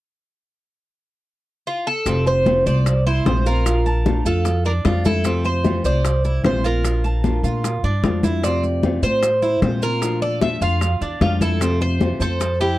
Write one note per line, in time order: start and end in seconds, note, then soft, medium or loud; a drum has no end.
1.67 1.87 F4 medium
1.87 2.27 A4 medium
2.06 2.62 F1 medium
2.06 2.44 C3 medium
2.06 2.46 A3 medium
2.06 2.26 C4 medium
2.06 2.46 C4 medium
2.06 2.46 F4 medium
2.06 high bongo medium
2.06 high conga soft
2.06 maracas medium
2.26 2.64 C5 medium
2.26 high bongo soft
2.26 high conga soft
2.26 maracas soft
2.46 2.65 C3 medium
2.46 2.65 E3 medium
2.46 2.66 A3 medium
2.46 2.66 C4 medium
2.46 2.64 F4 medium
2.46 high bongo medium
2.46 high conga medium
2.46 maracas soft
2.66 3.22 C2 medium
2.66 2.85 A3 soft
2.66 2.85 C4 soft
2.66 2.85 F4 soft
2.66 3.05 C5 medium
2.66 3.06 D5 loud
2.66 high bongo soft
2.66 high conga soft
2.66 maracas medium
2.86 muted nylon-string guitar stroke medium
2.86 high bongo medium
2.86 high conga soft
2.86 maracas medium
3.06 3.26 E4 medium
3.06 3.46 C5 medium
3.06 high bongo soft
3.06 high conga soft
3.06 maracas soft
3.25 4.19 A#1 medium
3.25 3.45 C3 medium
3.25 3.45 E3 medium
3.25 3.45 A3 medium
3.25 3.45 C4 medium
3.25 3.44 F4 medium
3.25 3.46 C5 medium
3.25 high bongo medium
3.25 low bongo medium
3.25 high conga medium
3.25 maracas soft
3.45 3.66 A3 soft
3.45 3.65 C4 soft
3.45 3.65 F4 soft
3.45 3.85 F4 medium
3.45 4.26 A#4 medium
3.45 high conga soft
3.45 maracas medium
3.66 4.04 F3 medium
3.66 4.05 D4 medium
3.66 4.06 F4 medium
3.66 high bongo medium
3.66 high conga soft
3.66 maracas medium
3.86 4.24 A5 medium
3.86 high conga soft
3.86 maracas soft
4.05 4.24 F3 medium
4.05 4.25 A3 medium
4.05 4.25 D4 medium
4.05 4.24 F4 medium
4.05 high bongo medium
4.05 high conga medium
4.05 maracas soft
4.25 4.81 F2 medium
4.25 4.44 A3 soft
4.25 4.45 D4 soft
4.25 4.44 F4 soft
4.25 4.64 F4 medium
4.25 4.65 A4 medium
4.25 high bongo soft
4.25 high conga soft
4.25 maracas medium
4.45 muted nylon-string guitar stroke medium
4.45 high bongo medium
4.45 high conga soft
4.45 maracas medium
4.65 5.04 D4 medium
4.65 4.71 A#4 medium
4.65 high bongo soft
4.65 high conga soft
4.65 maracas soft
4.85 5.78 F2 medium
4.85 5.04 F3 medium
4.85 5.04 A3 medium
4.85 5.05 D4 medium
4.85 5.06 F4 medium
4.85 5.04 F4 medium
4.85 high bongo medium
4.85 low bongo medium
4.85 high conga medium
4.85 maracas soft
5.05 5.24 A3 soft
5.05 5.25 D4 soft
5.05 5.25 E4 medium
5.05 5.24 F4 soft
5.05 5.45 A4 medium
5.05 high bongo soft
5.05 high conga medium
5.05 maracas medium
5.24 5.63 C3 medium
5.24 5.64 A3 medium
5.24 5.44 C4 medium
5.24 5.64 C4 medium
5.24 5.65 F4 medium
5.24 high bongo medium
5.24 high conga soft
5.24 maracas medium
5.44 5.85 C5 medium
5.44 high bongo soft
5.44 high conga soft
5.44 maracas soft
5.64 5.83 C3 medium
5.64 5.84 E3 medium
5.64 5.84 A3 medium
5.64 5.84 C4 medium
5.64 5.83 F4 medium
5.64 high bongo medium
5.64 high conga medium
5.64 maracas soft
5.84 6.40 C2 medium
5.84 6.03 A3 soft
5.84 6.04 C4 soft
5.84 6.04 F4 soft
5.84 6.23 C5 medium
5.84 6.41 D5 medium
5.84 high bongo soft
5.84 high conga soft
5.84 maracas medium
6.04 muted nylon-string guitar stroke medium
6.04 high bongo medium
6.04 high conga soft
6.04 maracas medium
6.25 6.44 E4 medium
6.25 high bongo soft
6.25 high conga soft
6.25 maracas soft
6.44 7.37 A#1 medium
6.44 6.63 C3 medium
6.44 6.63 E3 medium
6.44 6.64 A3 medium
6.44 6.63 C4 medium
6.44 6.62 F4 medium
6.44 6.64 C5 medium
6.44 6.65 C5 medium
6.44 high bongo medium
6.44 low bongo medium
6.44 high conga medium
6.44 maracas soft
6.63 6.84 A3 soft
6.63 6.83 C4 soft
6.63 6.83 F4 soft
6.63 7.03 F4 medium
6.63 7.80 A#4 medium
6.63 high conga soft
6.63 maracas medium
6.83 7.22 F3 medium
6.83 7.23 D4 medium
6.83 7.24 F4 medium
6.83 high bongo medium
6.83 high conga soft
6.83 maracas medium
7.04 7.43 A5 medium
7.04 high conga soft
7.04 maracas soft
7.23 7.43 F3 medium
7.23 7.43 A3 medium
7.23 7.43 D4 medium
7.23 7.42 F4 medium
7.23 high bongo medium
7.23 high conga medium
7.23 maracas soft
7.43 7.80 A#2 medium
7.43 7.63 A3 soft
7.43 7.63 D4 soft
7.43 7.63 F4 soft
7.43 7.82 F4 medium
7.43 high bongo soft
7.43 high conga soft
7.43 maracas medium
7.64 muted nylon-string guitar stroke medium
7.64 high bongo medium
7.64 high conga soft
7.64 maracas medium
7.83 8.02 G2 medium
7.83 8.22 D4 medium
7.83 high bongo soft
7.83 high conga soft
7.83 maracas soft
8.03 8.97 F2 medium
8.03 8.22 F3 medium
8.03 8.23 A3 medium
8.03 8.23 D4 medium
8.03 8.22 F4 medium
8.03 high bongo medium
8.03 low bongo medium
8.03 high conga medium
8.03 maracas soft
8.23 8.43 A3 soft
8.23 8.43 D4 soft
8.23 8.43 E4 medium
8.23 8.42 F4 soft
8.23 high bongo soft
8.23 high conga medium
8.23 maracas medium
8.43 8.82 C3 medium
8.43 8.83 A3 medium
8.43 8.63 C4 medium
8.43 8.83 C4 medium
8.43 8.83 F4 medium
8.43 9.03 D5 medium
8.43 high bongo medium
8.43 high conga soft
8.43 maracas medium
8.63 high bongo soft
8.63 high conga soft
8.63 maracas soft
8.83 9.02 C3 medium
8.83 9.02 E3 medium
8.83 9.03 A3 medium
8.83 9.03 C4 medium
8.83 9.01 F4 medium
8.83 high bongo medium
8.83 high conga medium
8.83 maracas soft
9.02 9.58 A2 medium
9.02 9.22 A3 soft
9.02 9.22 C4 soft
9.02 9.22 F4 soft
9.02 9.59 C5 medium
9.02 9.42 C5 medium
9.02 high bongo soft
9.02 high conga soft
9.02 maracas medium
9.23 muted nylon-string guitar stroke medium
9.23 high bongo medium
9.23 high conga soft
9.23 maracas medium
9.42 9.62 E4 medium
9.42 high bongo soft
9.42 high conga soft
9.42 maracas soft
9.62 10.55 A#2 medium
9.62 9.81 C3 medium
9.62 9.82 E3 medium
9.62 9.82 A3 medium
9.62 9.82 C4 medium
9.62 9.81 F4 medium
9.62 9.82 C5 medium
9.62 high bongo medium
9.62 low bongo medium
9.62 high conga medium
9.62 maracas soft
9.82 10.01 A3 soft
9.82 10.02 C4 soft
9.82 10.01 F4 medium
9.82 10.21 F4 medium
9.82 10.22 A#4 medium
9.82 high conga soft
9.82 maracas medium
10.02 10.40 F3 medium
10.02 10.41 A3 medium
10.02 10.42 D4 medium
10.02 10.42 F4 medium
10.02 high bongo medium
10.02 high conga soft
10.02 maracas medium
10.22 10.61 A4 medium
10.22 10.42 D5 medium
10.22 high conga soft
10.22 maracas soft
10.41 10.61 F3 medium
10.41 10.61 A3 medium
10.41 10.61 D4 medium
10.41 10.60 F4 medium
10.41 10.62 E5 medium
10.41 high bongo medium
10.41 high conga medium
10.41 maracas soft
10.61 10.98 F2 medium
10.61 10.81 A3 soft
10.61 10.81 D4 soft
10.61 10.81 F4 soft
10.61 11.00 F4 medium
10.61 11.23 F5 loud
10.61 high bongo soft
10.61 high conga soft
10.61 maracas medium
10.81 muted nylon-string guitar stroke medium
10.81 high bongo medium
10.81 high conga soft
10.81 maracas medium
11.01 11.20 E2 medium
11.01 11.40 D4 medium
11.01 high bongo soft
11.01 high conga soft
11.01 maracas soft
11.21 12.14 F2 medium
11.21 11.40 F3 medium
11.21 11.41 A3 medium
11.21 11.41 D4 medium
11.21 11.42 F4 medium
11.21 11.40 F4 medium
11.21 high bongo medium
11.21 low bongo medium
11.21 high conga medium
11.21 maracas soft
11.41 11.60 A3 soft
11.41 11.61 D4 soft
11.41 11.61 E4 medium
11.41 11.60 F4 soft
11.41 11.78 A4 medium
11.41 high bongo soft
11.41 high conga medium
11.41 maracas medium
11.60 11.99 C3 medium
11.60 12.00 A3 medium
11.60 11.81 C4 medium
11.60 12.00 C4 medium
11.60 12.01 F4 medium
11.60 high bongo medium
11.60 high conga soft
11.60 maracas loud
11.81 12.22 C5 medium
11.81 high bongo soft
11.81 high conga soft
11.81 maracas soft
12.00 12.20 C3 medium
12.00 12.20 E3 medium
12.00 12.20 A3 medium
12.00 12.20 C4 medium
12.00 12.19 F4 medium
12.00 high bongo medium
12.00 high conga medium
12.00 maracas soft
12.20 12.76 F2 medium
12.20 12.39 A3 soft
12.20 12.39 C4 soft
12.20 12.39 F4 soft
12.20 12.60 A4 loud
12.20 12.59 C5 medium
12.20 high bongo soft
12.20 high conga soft
12.20 maracas medium
12.40 muted nylon-string guitar stroke medium
12.40 high bongo medium
12.40 high conga soft
12.40 maracas medium
12.60 12.79 E4 medium
12.60 12.79 G4 medium
12.60 high bongo soft
12.60 high conga soft
12.60 maracas soft